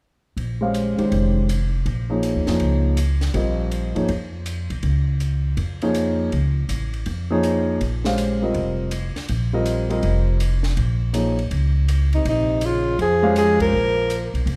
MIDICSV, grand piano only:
0, 0, Header, 1, 2, 480
1, 0, Start_track
1, 0, Tempo, 371058
1, 484, Time_signature, 4, 2, 24, 8
1, 18836, End_track
2, 0, Start_track
2, 0, Title_t, "Grand piano"
2, 0, Program_c, 0, 0
2, 787, Note_on_c, 0, 56, 47
2, 798, Note_on_c, 0, 61, 42
2, 798, Note_on_c, 0, 67, 42
2, 803, Note_on_c, 0, 72, 45
2, 808, Note_on_c, 0, 77, 50
2, 1242, Note_off_c, 0, 56, 0
2, 1247, Note_off_c, 0, 61, 0
2, 1248, Note_off_c, 0, 67, 0
2, 1250, Note_off_c, 0, 72, 0
2, 1253, Note_off_c, 0, 77, 0
2, 1263, Note_on_c, 0, 51, 45
2, 1267, Note_on_c, 0, 56, 40
2, 1278, Note_on_c, 0, 61, 40
2, 1281, Note_on_c, 0, 67, 45
2, 1287, Note_on_c, 0, 72, 46
2, 1885, Note_off_c, 0, 51, 0
2, 1887, Note_off_c, 0, 56, 0
2, 1892, Note_off_c, 0, 61, 0
2, 1894, Note_off_c, 0, 67, 0
2, 1897, Note_off_c, 0, 72, 0
2, 2712, Note_on_c, 0, 53, 45
2, 2722, Note_on_c, 0, 58, 44
2, 2726, Note_on_c, 0, 63, 41
2, 2727, Note_on_c, 0, 68, 37
2, 2734, Note_on_c, 0, 73, 49
2, 3166, Note_off_c, 0, 53, 0
2, 3171, Note_off_c, 0, 58, 0
2, 3173, Note_off_c, 0, 63, 0
2, 3174, Note_off_c, 0, 68, 0
2, 3177, Note_off_c, 0, 73, 0
2, 3199, Note_on_c, 0, 53, 52
2, 3204, Note_on_c, 0, 58, 46
2, 3214, Note_on_c, 0, 63, 42
2, 3215, Note_on_c, 0, 68, 43
2, 3220, Note_on_c, 0, 73, 50
2, 3814, Note_off_c, 0, 53, 0
2, 3817, Note_off_c, 0, 58, 0
2, 3822, Note_off_c, 0, 63, 0
2, 3822, Note_off_c, 0, 68, 0
2, 3825, Note_off_c, 0, 73, 0
2, 4316, Note_on_c, 0, 55, 43
2, 4318, Note_on_c, 0, 60, 38
2, 4327, Note_on_c, 0, 65, 38
2, 4331, Note_on_c, 0, 70, 37
2, 4341, Note_on_c, 0, 75, 50
2, 5055, Note_off_c, 0, 55, 0
2, 5056, Note_off_c, 0, 60, 0
2, 5061, Note_off_c, 0, 65, 0
2, 5063, Note_off_c, 0, 70, 0
2, 5068, Note_off_c, 0, 75, 0
2, 5109, Note_on_c, 0, 53, 48
2, 5118, Note_on_c, 0, 58, 40
2, 5119, Note_on_c, 0, 63, 41
2, 5127, Note_on_c, 0, 68, 39
2, 5132, Note_on_c, 0, 73, 49
2, 5266, Note_off_c, 0, 53, 0
2, 5271, Note_off_c, 0, 58, 0
2, 5271, Note_off_c, 0, 63, 0
2, 5275, Note_off_c, 0, 68, 0
2, 5278, Note_off_c, 0, 73, 0
2, 7534, Note_on_c, 0, 53, 56
2, 7535, Note_on_c, 0, 58, 54
2, 7538, Note_on_c, 0, 63, 50
2, 7544, Note_on_c, 0, 68, 54
2, 7548, Note_on_c, 0, 73, 63
2, 8144, Note_off_c, 0, 53, 0
2, 8144, Note_off_c, 0, 58, 0
2, 8146, Note_off_c, 0, 63, 0
2, 8149, Note_off_c, 0, 68, 0
2, 8151, Note_off_c, 0, 73, 0
2, 9450, Note_on_c, 0, 53, 64
2, 9450, Note_on_c, 0, 58, 54
2, 9462, Note_on_c, 0, 63, 59
2, 9465, Note_on_c, 0, 68, 62
2, 9470, Note_on_c, 0, 73, 72
2, 10062, Note_off_c, 0, 53, 0
2, 10062, Note_off_c, 0, 58, 0
2, 10068, Note_off_c, 0, 63, 0
2, 10070, Note_off_c, 0, 68, 0
2, 10072, Note_off_c, 0, 73, 0
2, 10413, Note_on_c, 0, 56, 49
2, 10421, Note_on_c, 0, 61, 44
2, 10421, Note_on_c, 0, 67, 47
2, 10427, Note_on_c, 0, 72, 48
2, 10430, Note_on_c, 0, 77, 55
2, 10860, Note_off_c, 0, 56, 0
2, 10863, Note_off_c, 0, 67, 0
2, 10864, Note_off_c, 0, 61, 0
2, 10867, Note_off_c, 0, 72, 0
2, 10868, Note_off_c, 0, 77, 0
2, 10892, Note_on_c, 0, 55, 46
2, 10899, Note_on_c, 0, 60, 44
2, 10903, Note_on_c, 0, 65, 46
2, 10908, Note_on_c, 0, 70, 42
2, 10912, Note_on_c, 0, 75, 54
2, 11503, Note_off_c, 0, 55, 0
2, 11506, Note_off_c, 0, 60, 0
2, 11509, Note_off_c, 0, 65, 0
2, 11511, Note_off_c, 0, 70, 0
2, 11513, Note_off_c, 0, 75, 0
2, 12331, Note_on_c, 0, 55, 54
2, 12335, Note_on_c, 0, 60, 45
2, 12338, Note_on_c, 0, 65, 51
2, 12343, Note_on_c, 0, 70, 53
2, 12348, Note_on_c, 0, 75, 58
2, 12778, Note_off_c, 0, 55, 0
2, 12781, Note_off_c, 0, 60, 0
2, 12782, Note_off_c, 0, 65, 0
2, 12784, Note_off_c, 0, 70, 0
2, 12787, Note_off_c, 0, 75, 0
2, 12801, Note_on_c, 0, 55, 50
2, 12805, Note_on_c, 0, 60, 42
2, 12810, Note_on_c, 0, 65, 44
2, 12820, Note_on_c, 0, 70, 46
2, 12823, Note_on_c, 0, 75, 57
2, 13417, Note_off_c, 0, 55, 0
2, 13419, Note_off_c, 0, 60, 0
2, 13422, Note_off_c, 0, 65, 0
2, 13427, Note_off_c, 0, 70, 0
2, 13428, Note_off_c, 0, 75, 0
2, 14400, Note_on_c, 0, 53, 42
2, 14406, Note_on_c, 0, 58, 41
2, 14410, Note_on_c, 0, 63, 40
2, 14412, Note_on_c, 0, 68, 39
2, 14417, Note_on_c, 0, 73, 50
2, 14689, Note_off_c, 0, 53, 0
2, 14692, Note_off_c, 0, 58, 0
2, 14694, Note_off_c, 0, 63, 0
2, 14696, Note_off_c, 0, 68, 0
2, 14698, Note_off_c, 0, 73, 0
2, 17107, Note_on_c, 0, 56, 66
2, 17112, Note_on_c, 0, 61, 59
2, 17118, Note_on_c, 0, 67, 59
2, 17123, Note_on_c, 0, 72, 57
2, 17124, Note_on_c, 0, 77, 78
2, 17727, Note_off_c, 0, 56, 0
2, 17729, Note_off_c, 0, 61, 0
2, 17732, Note_off_c, 0, 67, 0
2, 17734, Note_off_c, 0, 72, 0
2, 17735, Note_off_c, 0, 77, 0
2, 18836, End_track
0, 0, End_of_file